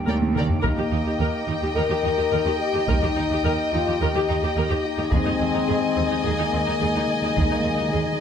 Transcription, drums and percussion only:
0.07 taiko high
0.22 taiko high
0.36 taiko mid
0.49 taiko low
0.64 taiko
2.88 taiko
5.12 taiko
7.37 taiko

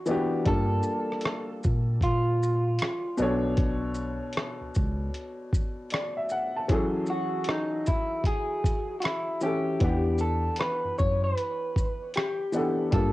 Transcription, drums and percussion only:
0.06 shaker
0.46 kick, closed hi-hat
0.83 shaker
1.12 cross-stick
1.21 closed hi-hat
1.26 cross-stick
1.64 kick, shaker
2.01 kick, closed hi-hat
2.43 shaker
2.79 cross-stick, closed hi-hat
3.18 shaker
3.57 kick, closed hi-hat
3.95 shaker
4.33 closed hi-hat
4.37 cross-stick
4.75 kick, shaker
5.14 closed hi-hat
5.53 kick, shaker
5.90 cross-stick, closed hi-hat
6.29 shaker
6.69 kick, closed hi-hat
7.06 shaker
7.44 closed hi-hat
7.49 cross-stick
7.86 kick, closed hi-hat, shaker
8.24 kick, closed hi-hat
8.64 kick, closed hi-hat, shaker
9.02 cross-stick, closed hi-hat
9.41 shaker
9.80 kick, closed hi-hat
10.18 shaker
10.56 closed hi-hat
10.61 cross-stick
10.99 kick, shaker
11.38 closed hi-hat
11.76 kick, shaker
12.14 cross-stick, closed hi-hat
12.53 shaker
12.92 kick, closed hi-hat

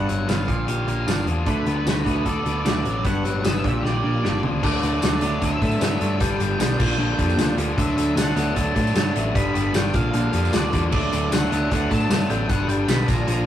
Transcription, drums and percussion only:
0.09 closed hi-hat
0.29 snare, closed hi-hat, tambourine
0.48 kick, closed hi-hat
0.68 closed hi-hat
0.88 closed hi-hat
1.08 snare, closed hi-hat, tambourine
1.27 closed hi-hat
1.46 kick, closed hi-hat
1.66 closed hi-hat
1.87 snare, closed hi-hat, tambourine
2.06 kick, closed hi-hat
2.26 kick, closed hi-hat
2.46 closed hi-hat
2.66 snare, closed hi-hat, tambourine
2.85 closed hi-hat
3.05 kick, closed hi-hat
3.25 closed hi-hat
3.45 snare, closed hi-hat, tambourine
3.64 kick, closed hi-hat
3.86 snare
4.25 snare
4.43 floor tom
4.63 kick, crash, tambourine
4.82 closed hi-hat, tambourine
5.02 snare, closed hi-hat, tambourine
5.21 closed hi-hat, tambourine
5.42 kick, closed hi-hat
5.62 kick, closed hi-hat, tambourine
5.71 tambourine
5.81 snare, closed hi-hat, tambourine
6.01 closed hi-hat, tambourine
6.20 kick, closed hi-hat, tambourine
6.40 closed hi-hat, tambourine
6.60 snare, closed hi-hat, tambourine
6.71 tambourine
6.80 kick, tambourine, crash
7.19 kick, closed hi-hat, tambourine
7.30 tambourine
7.39 snare, closed hi-hat, tambourine
7.58 closed hi-hat, tambourine
7.78 kick, closed hi-hat, tambourine
7.98 closed hi-hat, tambourine
8.17 snare, closed hi-hat, tambourine
8.36 closed hi-hat, tambourine
8.48 tambourine
8.56 kick, closed hi-hat
8.76 kick, closed hi-hat, tambourine
8.87 tambourine
8.96 snare, closed hi-hat, tambourine
9.16 closed hi-hat, tambourine
9.35 kick, closed hi-hat, tambourine
9.55 closed hi-hat, tambourine
9.74 snare, closed hi-hat, tambourine
9.86 tambourine
9.94 kick, closed hi-hat, tambourine
10.14 closed hi-hat, tambourine
10.33 closed hi-hat
10.45 tambourine
10.53 snare, closed hi-hat, tambourine
10.73 kick, closed hi-hat, tambourine
10.92 kick, tambourine, crash
11.13 closed hi-hat, tambourine
11.32 snare, closed hi-hat, tambourine
11.52 closed hi-hat, tambourine
11.71 kick, closed hi-hat
11.91 kick, closed hi-hat, tambourine
12.00 tambourine
12.10 snare, closed hi-hat, tambourine
12.30 closed hi-hat, tambourine
12.49 kick, closed hi-hat, tambourine
12.69 closed hi-hat, tambourine
12.88 snare, closed hi-hat, tambourine
13.08 kick, closed hi-hat, tambourine
13.19 tambourine
13.28 closed hi-hat

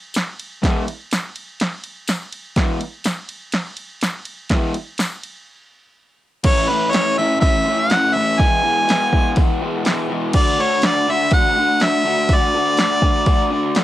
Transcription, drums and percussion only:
0.14 snare, ride, tambourine
0.39 ride
0.63 kick, snare, ride
0.88 ride
1.11 snare, ride, tambourine
1.36 ride
1.60 snare, ride
1.84 ride
2.08 snare, ride, tambourine
2.33 ride
2.56 kick, snare, ride
2.81 ride
3.04 snare, ride, tambourine
3.29 ride
3.52 snare, ride
3.77 ride
4.01 snare, ride, tambourine
4.25 ride
4.49 kick, snare, ride
4.74 ride
4.98 snare, ride, tambourine
5.23 ride
6.44 kick, open hi-hat, crash
6.93 snare, open hi-hat
7.42 kick, open hi-hat
7.90 snare, open hi-hat
8.40 kick, open hi-hat
8.89 snare, open hi-hat
9.13 kick
9.36 kick, open hi-hat
9.85 snare, open hi-hat
10.34 kick, crash
10.82 snare, open hi-hat
11.31 kick, open hi-hat
11.80 snare, open hi-hat
12.29 kick, open hi-hat
12.77 snare, open hi-hat
13.02 kick
13.26 kick, open hi-hat
13.75 snare, open hi-hat

